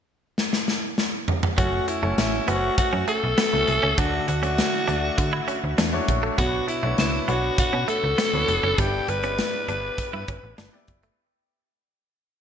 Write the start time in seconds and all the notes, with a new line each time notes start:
0.38 snare
0.53 snare
0.68 snare
0.98 snare
1.28 mid tom
1.43 mid tom
1.57 F#1 F#3 A3 C#4 F#4 C#5, kick, closed hi-hat
1.88 E4, muted clean electric guitar stroke, closed hi-hat
2.02 F#1 A3 C#4 F#4 C#5
2.18 A1 E4, snare, closed hi-hat
2.47 F#1 A3 B3 C#4 F#4 C5, closed hi-hat
2.55 C#5
2.78 F#2 F#4, muted clean electric guitar stroke, kick, closed hi-hat
2.93 F#2 C#4
3.08 A3 A4, closed hi-hat
3.24 B1
3.38 B3, snare, closed hi-hat
3.53 C#2 A3 C#4 F#4 E5
3.68 C2, muted clean electric guitar stroke, closed hi-hat
3.83 C#2 C#4
3.98 D2 D3 A3 D4 F#4 D5, kick, closed hi-hat
4.28 D2 F#4, muted clean electric guitar stroke, closed hi-hat
4.42 A3 C#4 D4 F#4 D5, closed hi-hat
4.58 snare, closed hi-hat
4.88 D2 A3 D4 F#4 D5, closed hi-hat
5.18 D3, muted clean electric guitar stroke, kick, closed hi-hat
5.33 E4
5.48 C#4, closed hi-hat
5.64 D2
5.78 E2 D4, snare, closed hi-hat
5.93 A3 D4 F#4 C#5, muted clean electric guitar stroke
6.08 A#1, kick, closed hi-hat
6.23 A3
6.38 B1 B2 B3 D4 F#4 C#5, kick, closed hi-hat
6.68 E4, muted clean electric guitar stroke, closed hi-hat
6.83 B1 A3 B3 D4 F#4 C#5
6.98 C#2 E4, snare, closed hi-hat
7.28 B1 B3 D4 F#4 C#5, closed hi-hat
7.58 B2 F#4, muted clean electric guitar stroke, kick, closed hi-hat
7.73 B2 C#4
7.88 A3 A4, closed hi-hat
8.04 C#2
8.18 B3, snare, closed hi-hat
8.33 D2 B3 D4 F#4 C#5
8.48 F1, muted clean electric guitar stroke, closed hi-hat
8.63 F#1 C#4
8.78 G1 G2 B3 D4 E4 G4 D5, kick, closed hi-hat
9.08 G1 B4, muted clean electric guitar stroke, closed hi-hat
9.23 B3 C#4 E4 G4 D5, closed hi-hat
9.38 snare, closed hi-hat
9.68 G1 B3 D4 E4 G4 B4, closed hi-hat
9.98 muted clean electric guitar stroke, kick, closed hi-hat
10.13 G2 E4
10.28 G1 C#4, kick, closed hi-hat
10.43 A1
10.58 G1 D4, snare, closed hi-hat
10.73 B3 E4 G4 D5, muted clean electric guitar stroke
10.88 F#1, kick, closed hi-hat
11.03 A3, closed hi-hat